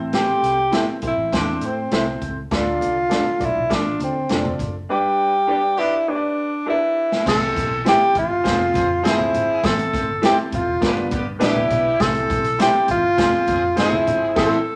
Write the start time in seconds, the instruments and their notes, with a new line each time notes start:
Already playing: fingered electric bass A1, upright piano A2 C4 E4 A4 C5
0.13 tenor saxophone G4, snare, closed hi-hat
0.42 fingered electric bass C2, snare, closed hi-hat
0.72 upright piano C4 E4 A4 C5, clean electric guitar E4 A4 C5 E5, snare, closed hi-hat
1.02 fingered electric bass B1, upright piano C4 E4 A4 C5, kick, closed hi-hat
1.07 tenor saxophone E4
1.18 fingered electric bass A1
1.32 fingered electric bass E2, upright piano C4 E4 A4 C5, kick, snare, closed hi-hat
1.36 tenor saxophone D4
1.61 fingered electric bass A2, closed hi-hat
1.66 tenor saxophone C4
1.91 fingered electric bass C2, upright piano C4 E4 A4 C5, clean electric guitar E4 A4 C5 E5, snare, closed hi-hat
2.22 fingered electric bass C#2, kick, closed hi-hat
2.51 fingered electric bass D2, upright piano D3 D4 F4 A4 D5, tenor saxophone F4, kick, snare, closed hi-hat, muted conga
2.67 muted conga
2.81 fingered electric bass C2, closed hi-hat, high conga
3.09 upright piano D4 F4 A4 D5, clean electric guitar D4 F4 A4 D5, snare, closed hi-hat
3.26 muted conga
3.39 fingered electric bass B1, upright piano D4 F4 A4 D5, kick, closed hi-hat, high conga, low conga
3.44 tenor saxophone E4
3.55 fingered electric bass B1, low conga
3.69 upright piano D4 F4 A4 D5, kick, snare, closed hi-hat, muted conga
3.74 tenor saxophone D4
4.00 fingered electric bass D3, tenor saxophone C4, closed hi-hat, high conga
4.29 fingered electric bass F1, upright piano D4 F4 A4 D5, clean electric guitar D4 F4 A4 D5, snare, closed hi-hat, muted conga
4.45 muted conga, high conga
4.59 fingered electric bass F#1, kick, closed hi-hat, low conga
4.89 upright piano G2 D4 G4 B4 D5, tenor saxophone G4
5.47 horn section B3 D4 G4, clean electric guitar D4 G4 B4 D5, upright piano D4 G4 B4 D5
5.77 horn section B3 D4 G4, upright piano D4 G4 B4 D5, tenor saxophone E4
6.08 upright piano D4 G4 B4 C#5, tenor saxophone D4
6.15 upright piano D5
6.66 upright piano D4 G4 A#4 D5, clean electric guitar D4 G4 B4 D5, tenor saxophone E4, glockenspiel E6
6.73 upright piano B4
7.12 snare
7.25 fingered electric bass C2, upright piano E3 C4 E4 G4 C5, tenor saxophone A4, glockenspiel A6, kick, snare, crash
7.56 fingered electric bass B1, kick, snare, closed hi-hat, high conga
7.84 upright piano C4 E4 G4 C5, clean electric guitar E4 G4 C5 E5, glockenspiel G6, snare, closed hi-hat
7.88 tenor saxophone G4
8.15 fingered electric bass A1, tenor saxophone F4, glockenspiel F6, kick, closed hi-hat, high conga, low conga
8.30 fingered electric bass G1
8.43 fingered electric bass F1, upright piano C4 F4 G#4 C5, horn section C4 F4 G#4, kick, snare, closed hi-hat, muted conga
8.74 fingered electric bass F2, horn section C4 F4 G#4, kick, closed hi-hat, high conga
9.03 fingered electric bass G1, upright piano F3 C4 G#4 C5, horn section F3 C4 G#4, clean electric guitar F4 G#4 C5 F5, snare, closed hi-hat
9.07 tenor saxophone E4, glockenspiel E6
9.19 high conga
9.34 fingered electric bass G#1, closed hi-hat, low conga
9.63 fingered electric bass A1, upright piano A2 C4 E4 A4 C5, tenor saxophone A4, glockenspiel A6, kick, snare, closed hi-hat, muted conga
9.79 closed hi-hat, muted conga
9.93 fingered electric bass G1, kick, snare, closed hi-hat, high conga
10.22 upright piano C4 E4 A4 B4, clean electric guitar E4 A4 C5 E5, tenor saxophone G4, glockenspiel G6, snare, closed hi-hat, muted conga
10.30 upright piano C5
10.52 fingered electric bass F1, tenor saxophone F4, glockenspiel F6, kick, closed hi-hat, high conga, low conga
10.67 fingered electric bass E1
10.81 fingered electric bass G1, upright piano G2 B3 D4 G4 A#4, horn section B3 D4 G4, kick, snare, closed hi-hat, muted conga
10.88 upright piano B4
10.97 muted conga
11.11 fingered electric bass G2, horn section B3 D4 G4, kick, closed hi-hat, high conga
11.39 fingered electric bass A#1, upright piano B3 D4 G4 B4, horn section B3 D4 G4, clean electric guitar D4 G4 B4 D5, tenor saxophone E4, glockenspiel E6, snare, closed hi-hat
11.56 muted conga, high conga
11.69 fingered electric bass B1, closed hi-hat, low conga
11.99 fingered electric bass C2, upright piano E3 C4 E4 G4 C5, tenor saxophone A4, glockenspiel A6, kick, snare, closed hi-hat, muted conga
12.15 closed hi-hat
12.30 fingered electric bass B1, kick, closed hi-hat, high conga
12.44 closed hi-hat
12.59 upright piano C4 D4 G4 C5, clean electric guitar E4 G4 C5 E5, tenor saxophone G4, glockenspiel G6, snare, closed hi-hat, muted conga
12.65 upright piano E4
12.74 muted conga
12.88 fingered electric bass A1, tenor saxophone F4, glockenspiel F6, kick, closed hi-hat, high conga, low conga
13.03 fingered electric bass G1
13.17 fingered electric bass F1, upright piano C4 F4 G#4 C5, horn section C4 F4 G#4, kick, snare, closed hi-hat, muted conga
13.33 muted fingered electric bass stroke
13.47 fingered electric bass F2, horn section C4 F4 G#4, kick, closed hi-hat, high conga
13.76 fingered electric bass G1, upright piano F3 C4 G#4 C5, horn section F3 C4 G#4, tenor saxophone E4, clean electric guitar F4 G#4 C5 F5, glockenspiel E6, snare, closed hi-hat
13.92 muted conga, high conga
14.07 fingered electric bass G#1, closed hi-hat, low conga
14.35 fingered electric bass A1, upright piano A2 C4 E4 A4, clean electric guitar E4 A4 C5 E5, tenor saxophone A4, kick, snare, crash
14.43 upright piano C5